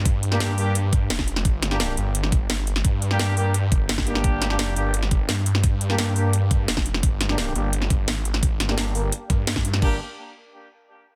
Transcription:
<<
  \new Staff \with { instrumentName = "Brass ensemble" } { \time 4/4 \key g \phrygian \tempo 4 = 172 r8. <bes d' g'>8. <bes d' g'>8 r2 | r8. <bes d' g'>8. r2 r8 | r8. <bes d' g'>8. <bes d' g'>8 r4. <bes d' g'>8~ | <bes d' g'>8. <bes d' g'>8. <bes d' g'>8 r2 |
r8. <bes d' g'>8. <bes d' g'>8 r2 | r8. <bes d' g'>8. <bes d' g'>8 r2 | r8. <bes d' g'>8. <bes d' g'>8 r2 | <bes d' g'>8 r2. r8 | }
  \new Staff \with { instrumentName = "Detuned saw bass" } { \clef bass \time 4/4 \key g \phrygian g,2. f,,4 | g,,4. g,,4. g,,4 | g,2~ g,8 g,,4. | g,,4. g,,4. g,4~ |
g,2. f,,4 | g,,4. g,,4. aes,,4~ | aes,,8 g,,4. r8 g,4. | g,,8 r2. r8 | }
  \new DrumStaff \with { instrumentName = "Drums" } \drummode { \time 4/4 <hh bd>8 hh16 sn16 <hh sn>8 hho8 hh8 <hh bd>8 <hh sn>16 <bd sn>16 hh16 sn16 | <hh bd>8 <hh sn>16 sn16 <hh sn>8 hh8 hh16 sn16 <hh bd>8 <hh sn>8 hh16 sn16 | <hh bd>8 hh16 sn16 <hh sn>8 hho8 hh8 <hh bd>8 <hh sn>16 <bd sn>16 hh16 sn16 | <hh bd>8 <hh sn>16 sn16 <hh sn>8 hh8 hh16 sn16 <hh bd>8 <hh sn>8 hh16 sn16 |
<hh bd>8 hh16 sn16 <hh sn>8 hho8 hh8 <hh bd>8 <hh sn>16 <bd sn>16 hh16 sn16 | <hh bd>8 <hh sn>16 sn16 <hh sn>8 hh8 hh16 sn16 <hh bd>8 <hh sn>8 hh16 sn16 | <hh bd>8 <hh sn>16 sn16 <hh sn>8 hho8 hh8 <hh bd>8 <hh sn>16 <bd sn>16 hh16 sn16 | <cymc bd>4 r4 r4 r4 | }
>>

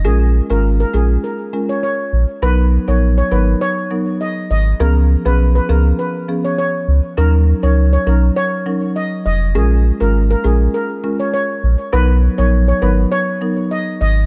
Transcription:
<<
  \new Staff \with { instrumentName = "Steel pan" } { \time 4/4 \key ees \minor \tempo 4 = 101 aes'8 r16 bes'16 r16 bes'16 aes'16 r16 bes'16 r8 des''16 des''8. r16 | b'8 r16 des''16 r16 des''16 b'16 r16 des''8. r16 dis''16 r16 dis''16 r16 | bes'8 r16 ces''16 r16 ces''16 bes'16 r16 ces''16 r8 des''16 des''8. r16 | bes'8 r16 des''16 r16 des''16 bes'16 r16 des''8. r16 ees''16 r16 ees''16 r16 |
aes'8 r16 bes'16 r16 bes'16 aes'16 r16 bes'16 r8 des''16 des''8. r16 | b'8 r16 des''16 r16 des''16 b'16 r16 des''8. r16 dis''16 r16 dis''16 r16 | }
  \new Staff \with { instrumentName = "Marimba" } { \time 4/4 \key ees \minor <aes des' f' bes'>16 r8 <aes des' f' bes'>16 r8 <aes des' f' bes'>16 r8. <aes des' f' bes'>16 r4 r16 | <fis b dis' ais'>16 r8 <fis b dis' ais'>16 r8 <fis b dis' ais'>16 r8. <fis b dis' ais'>16 r4 r16 | <f ces' des' aes'>16 r8 <f ces' des' aes'>16 r8 <f ces' des' aes'>16 r8. <f ces' des' aes'>16 r4 r16 | <ges des' ees' bes'>16 r8 <ges des' ees' bes'>16 r8 <ges des' ees' bes'>16 r8. <ges des' ees' bes'>16 r4 r16 |
<aes des' f' bes'>16 r8 <aes des' f' bes'>16 r8 <aes des' f' bes'>16 r8. <aes des' f' bes'>16 r4 r16 | <fis b dis' ais'>16 r8 <fis b dis' ais'>16 r8 <fis b dis' ais'>16 r8. <fis b dis' ais'>16 r4 r16 | }
  \new Staff \with { instrumentName = "Sub bass" } { \clef bass \time 4/4 \key ees \minor bes,,8. aes,,8. bes,,8 r4. bes,,16 r16 | b,,8. ais,,8. aes,,8 r4. aes,,8 | des,8. ces,8. des,8 r4. des,16 r16 | ees,8. des,8. ces,8 r4. f,,8 |
bes,,8. aes,,8. bes,,8 r4. bes,,16 r16 | b,,8. ais,,8. aes,,8 r4. aes,,8 | }
>>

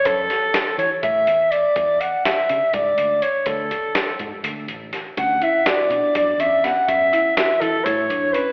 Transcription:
<<
  \new Staff \with { instrumentName = "Soprano saxophone" } { \time 7/8 \key fis \minor \tempo 4 = 123 a'4. cis''8 e''4 d''8~ | d''8 fis''8 e''4 d''4 cis''8 | a'2 r4. | fis''8 e''8 d''4 d''8 e''8 fis''8 |
e''4 e''8 a'8 cis''4 b'8 | }
  \new Staff \with { instrumentName = "Marimba" } { \time 7/8 \key fis \minor r2. r8 | r2. r8 | r2. r8 | cis'8 e'8 fis'8 d'8 d'8 cis'8 b8 |
cis'8 e'8 fis'8 e'8 e'8 d'8 cis'8 | }
  \new Staff \with { instrumentName = "Fingered electric bass" } { \clef bass \time 7/8 \key fis \minor fis,8 r4 e16 r16 a,8 e,8 r8 | e,8 r4 cis16 r16 gis,8 d,8 r8 | d,8 r4 gis,16 r16 d,8 a,,8 r8 | d,8 r4 b,16 r16 fis,8 e,8 r8 |
fis,8 r4 e16 r16 a,8 fis,8 r8 | }
  \new DrumStaff \with { instrumentName = "Drums" } \drummode { \time 7/8 <hh bd>8 <hh sn>8 <hh sn>8 hh8 <hh bd>8 hh8 hh8 | <hh bd>8 hh8 <hh sn>8 hh8 <hh bd>8 hh8 hh8 | <hh bd>8 <hh bd>8 <hh sn>8 <hh bd>8 hh8 hh8 <hh sn>8 | <hh bd>8 hh8 <hh sn>8 hh8 <hh bd>8 hh8 <hh sn>8 |
<hh bd>8 hh8 <hh sn>8 hh8 <hh bd>8 hh8 hh8 | }
>>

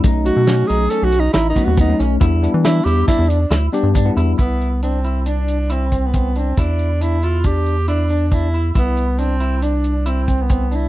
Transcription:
<<
  \new Staff \with { instrumentName = "Tenor saxophone" } { \time 5/4 \key c \major \tempo 4 = 138 r8 fis'4 aes'8 \tuplet 3/2 { a'8 fis'8 dis'8 e'8 dis'8 fis'8 } dis'8 r8 | r4 e'8 g'8 e'8 d'8 r2 | b4 c'4 d'4 c'8. b8. c'8 | d'4 e'8 f'8 g'4 d'4 e'8. r16 |
b4 c'4 d'4 c'8. b8. e'8 | }
  \new Staff \with { instrumentName = "Clean electric guitar" } { \time 5/4 \key c \major dis'4 des'8 dis'8 des'4 dis'8 b8 b8 des'8 | e'4 d'8 e'8 d'4 e'8 d'8 d'8 e'8 | e'4 d'8 e'8 d'4 e'8 c'8 c'8 d'8 | e'4 d'8 e'8 d'4 e'8 d'8 d'8 e'8 |
e'4 d'8 e'8 d'4 e'8 c'8 c'8 d'8 | }
  \new Staff \with { instrumentName = "Tine electric piano" } { \time 5/4 \key c \major <fis a des' dis'>8 <fis a des' dis'>2 r4 <fis a des' fis'>8. <fis a des' dis'>8. | <g b d' e'>8 <g b d' e'>2 r4 <g b d' g'>8. <g b d' e'>8. | r1 r4 | r1 r4 |
r1 r4 | }
  \new Staff \with { instrumentName = "Analog synth bass" } { \clef bass \time 5/4 \key c \major b,,8. b,8. b,,8 r16 b,,8. a,,8 r16 dis,8. b,,8 | e,8. e8. e,8 r16 e,8. d,8 r16 g,8. e,8 | c,1~ c,4 | e,1~ e,4 |
c,1~ c,4 | }
  \new DrumStaff \with { instrumentName = "Drums" } \drummode { \time 5/4 <hh bd>8 hh8 <hh sn>8 <hh sn>8 hh8 hh8 <hh sn>8 <hh bd sn>8 <hh bd>8 <hh sn>8 | <hh bd>8 hh8 <hh sn>8 hh8 <hh bd sn>8 hh8 <hh sn>8 hh8 <hh bd>8 hh8 | <hh bd>8 hh8 hh8 hh8 hh8 hh8 hh8 <hh bd>8 <hh bd>8 hh8 | <hh bd>8 hh8 hh8 hh8 <hh bd>8 hh8 hh8 hh8 <hh bd>8 hh8 |
<hh bd>8 hh8 hh8 hh8 hh8 hh8 hh8 <hh bd>8 <hh bd>8 hh8 | }
>>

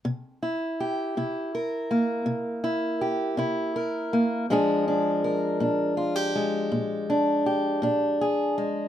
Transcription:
\new Staff \with { instrumentName = "Steel-string acoustic guitar" } { \time 12/8 \key c \mixolydian \tempo 4. = 54 << { r8 e'8 g'8 e'8 bes'8 bes4 e'8 g'8 e'8 bes'8 bes8 | <f aes d' aes'>8 d'8 bes'8 d'8 f'16 g'16 aes4 d'8 g'8 d'8 aes'8 aes8 | } \\ { c4 r8 c4 r8 c4 r8 c4 r8 | bes,4 r8 bes,4 r8 bes,4 r8 bes,4 r8 | } >> }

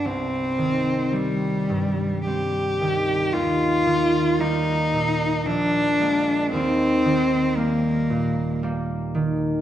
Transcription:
<<
  \new Staff \with { instrumentName = "Cello" } { \time 3/4 \key ees \major \tempo 4 = 56 c'4 g4 g'4 | f'4 ees'4 d'4 | c'4 bes4 r4 | }
  \new Staff \with { instrumentName = "Harp" } { \clef bass \time 3/4 \key ees \major <c, g>8 ees8 <g c'>8 g,8 <g c'>8 ees8 | ees,8 ees8 <g bes>8 bes,8 bes,,8 <aes bes>8 | ees,8 ees8 <g bes>8 bes,8 <g bes>8 ees8 | }
>>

